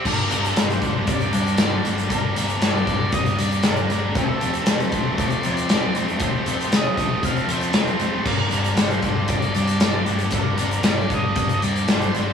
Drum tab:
CC |x---------------|----------------|----------------|----------------|
HH |--xxxxx-xxxxx-xx|x-xxx-x-xxxxxxx-|x-xxxxx-xxxxx-xx|x-xxx-x-xxxxxxx-|
SD |----oo------o---|----oo------o---|----oo------o---|----o-------o---|
BD |o-----o-o-------|o-----o-o-------|o-----o-o-------|o-----o-o-------|

CC |x---------------|----------------|
HH |--xxxxx-xxxxx-xx|x-xxx-x-xxxxxxx-|
SD |----o-------o---|----oo------o---|
BD |o-----o-o-------|o-----o-o-------|